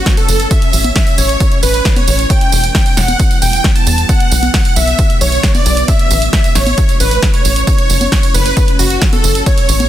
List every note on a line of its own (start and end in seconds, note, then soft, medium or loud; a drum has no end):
0.00 0.49 F#3 medium
0.00 0.49 A3 medium
0.00 2.26 C#4 medium
0.00 0.14 F#4 loud
0.06 kick loud
0.06 snare loud
0.06 closed hi-hat medium
0.06 tambourine soft
0.17 0.47 A4 loud
0.17 closed hi-hat medium
0.17 tambourine soft
0.29 0.47 F#1 medium
0.29 open hi-hat loud
0.29 tambourine medium
0.40 closed hi-hat medium
0.40 tambourine soft
0.51 4.06 E3 medium
0.51 2.28 A3 medium
0.51 0.91 E5 loud
0.51 kick loud
0.51 closed hi-hat medium
0.51 tambourine soft
0.62 closed hi-hat medium
0.73 0.91 A1 loud
0.73 open hi-hat loud
0.73 tambourine medium
0.84 closed hi-hat medium
0.84 tambourine soft
0.84 high conga medium
0.96 1.16 E5 medium
0.96 kick loud
0.96 snare loud
0.96 closed hi-hat medium
0.96 tambourine soft
1.07 closed hi-hat medium
1.07 tambourine soft
1.18 1.36 A1 loud
1.18 1.58 C#5 loud
1.18 open hi-hat loud
1.18 tambourine medium
1.29 closed hi-hat medium
1.29 tambourine soft
1.40 kick loud
1.40 closed hi-hat medium
1.40 tambourine soft
1.52 closed hi-hat medium
1.63 1.81 A1 medium
1.63 1.93 B4 loud
1.63 open hi-hat loud
1.63 tambourine medium
1.74 closed hi-hat medium
1.74 tambourine soft
1.85 kick loud
1.85 snare loud
1.85 closed hi-hat medium
1.85 tambourine soft
1.96 2.26 C#5 loud
1.96 closed hi-hat medium
1.96 tambourine soft
1.96 high conga medium
2.08 2.26 A1 medium
2.08 open hi-hat loud
2.08 tambourine medium
2.19 closed hi-hat medium
2.19 tambourine soft
2.30 4.07 G3 medium
2.30 5.85 B3 medium
2.30 2.70 G5 loud
2.30 kick loud
2.30 closed hi-hat medium
2.30 tambourine soft
2.41 closed hi-hat medium
2.52 2.71 E1 loud
2.52 open hi-hat loud
2.52 tambourine medium
2.64 closed hi-hat soft
2.64 tambourine soft
2.75 2.95 G5 medium
2.75 kick loud
2.75 snare loud
2.75 closed hi-hat medium
2.75 tambourine soft
2.86 closed hi-hat medium
2.86 tambourine soft
2.97 3.15 E1 loud
2.97 3.37 F#5 loud
2.97 snare medium
2.97 open hi-hat loud
2.97 tambourine medium
3.08 closed hi-hat medium
3.08 tambourine soft
3.08 high conga medium
3.20 kick loud
3.20 closed hi-hat medium
3.20 tambourine soft
3.31 closed hi-hat medium
3.31 tambourine soft
3.42 3.60 E1 loud
3.42 3.72 G5 loud
3.42 open hi-hat loud
3.42 tambourine medium
3.53 closed hi-hat medium
3.53 tambourine soft
3.64 kick loud
3.64 snare loud
3.64 closed hi-hat medium
3.64 tambourine soft
3.75 4.06 A5 loud
3.75 closed hi-hat medium
3.75 tambourine soft
3.87 4.05 E2 medium
3.87 open hi-hat loud
3.87 tambourine medium
3.98 closed hi-hat medium
3.98 tambourine soft
4.09 5.86 D3 medium
4.09 5.86 F#3 medium
4.09 4.49 F#5 loud
4.09 kick loud
4.09 closed hi-hat medium
4.09 tambourine soft
4.20 closed hi-hat medium
4.32 4.50 B1 loud
4.32 open hi-hat loud
4.32 tambourine medium
4.43 closed hi-hat medium
4.43 tambourine soft
4.43 high conga medium
4.54 4.74 F#5 medium
4.54 kick loud
4.54 snare loud
4.54 closed hi-hat medium
4.54 tambourine soft
4.65 closed hi-hat medium
4.65 tambourine soft
4.76 4.94 B1 loud
4.76 5.16 E5 loud
4.76 open hi-hat loud
4.76 tambourine medium
4.87 closed hi-hat medium
4.87 tambourine soft
4.99 kick loud
4.99 closed hi-hat medium
4.99 tambourine soft
5.10 closed hi-hat medium
5.21 5.39 B1 medium
5.21 5.51 C#5 loud
5.21 5.51 C#5 medium
5.21 open hi-hat loud
5.21 tambourine medium
5.32 closed hi-hat soft
5.32 tambourine soft
5.43 kick loud
5.43 snare loud
5.43 closed hi-hat medium
5.43 tambourine soft
5.55 5.85 D5 loud
5.55 closed hi-hat medium
5.55 tambourine soft
5.55 high conga medium
5.66 5.84 B1 medium
5.66 open hi-hat loud
5.66 tambourine medium
5.77 closed hi-hat medium
5.77 tambourine soft
5.88 7.66 E3 medium
5.88 9.43 A3 medium
5.88 9.43 C#4 medium
5.88 6.28 E5 loud
5.88 kick loud
5.88 closed hi-hat medium
5.88 tambourine soft
5.99 closed hi-hat medium
6.11 6.29 A1 loud
6.11 open hi-hat loud
6.11 tambourine medium
6.22 closed hi-hat medium
6.22 tambourine soft
6.33 6.53 E5 medium
6.33 kick loud
6.33 snare loud
6.33 closed hi-hat medium
6.33 tambourine soft
6.44 closed hi-hat medium
6.44 tambourine soft
6.55 6.74 A1 loud
6.55 6.95 C#5 medium
6.55 6.96 C#5 loud
6.55 snare medium
6.55 open hi-hat loud
6.55 tambourine medium
6.67 closed hi-hat medium
6.67 tambourine soft
6.67 high conga medium
6.78 kick loud
6.78 closed hi-hat medium
6.78 tambourine soft
6.89 closed hi-hat medium
6.89 tambourine soft
7.00 7.18 A1 medium
7.00 7.30 B4 loud
7.00 7.30 B4 medium
7.00 open hi-hat loud
7.00 tambourine medium
7.11 closed hi-hat medium
7.11 tambourine soft
7.23 kick loud
7.23 snare loud
7.23 closed hi-hat medium
7.23 tambourine soft
7.34 7.64 C#5 loud
7.34 closed hi-hat medium
7.34 tambourine soft
7.45 7.63 A1 medium
7.45 open hi-hat loud
7.45 tambourine medium
7.56 closed hi-hat medium
7.56 tambourine soft
7.67 9.45 F#3 medium
7.67 8.07 C#5 loud
7.67 kick loud
7.67 closed hi-hat medium
7.67 tambourine soft
7.78 closed hi-hat medium
7.90 8.08 F#1 loud
7.90 open hi-hat loud
7.90 tambourine medium
8.01 closed hi-hat medium
8.01 tambourine soft
8.01 high conga medium
8.12 8.32 C#5 medium
8.12 kick loud
8.12 snare loud
8.12 closed hi-hat medium
8.12 tambourine soft
8.23 closed hi-hat medium
8.23 tambourine soft
8.34 8.53 F#1 loud
8.34 8.75 B4 medium
8.34 8.75 B4 loud
8.34 open hi-hat loud
8.34 tambourine medium
8.46 closed hi-hat medium
8.46 tambourine soft
8.57 kick loud
8.57 closed hi-hat medium
8.57 tambourine soft
8.68 closed hi-hat medium
8.79 8.97 F#1 medium
8.79 9.09 F#4 medium
8.79 9.09 F#4 loud
8.79 open hi-hat loud
8.79 tambourine medium
8.90 closed hi-hat medium
8.90 tambourine soft
9.02 kick loud
9.02 snare loud
9.02 closed hi-hat medium
9.02 tambourine soft
9.13 9.43 A4 loud
9.13 closed hi-hat medium
9.13 tambourine soft
9.13 high conga medium
9.24 9.42 F#1 medium
9.24 open hi-hat loud
9.24 tambourine medium
9.35 closed hi-hat medium
9.35 tambourine soft
9.46 9.89 E3 medium
9.46 9.89 A3 medium
9.46 9.89 C#4 medium
9.46 9.86 C#5 loud
9.46 9.87 C#5 loud
9.46 kick loud
9.46 closed hi-hat medium
9.46 tambourine soft
9.58 closed hi-hat medium
9.58 tambourine soft
9.69 9.87 A1 loud
9.69 open hi-hat loud
9.69 tambourine medium
9.80 closed hi-hat medium
9.80 tambourine soft
9.80 high conga medium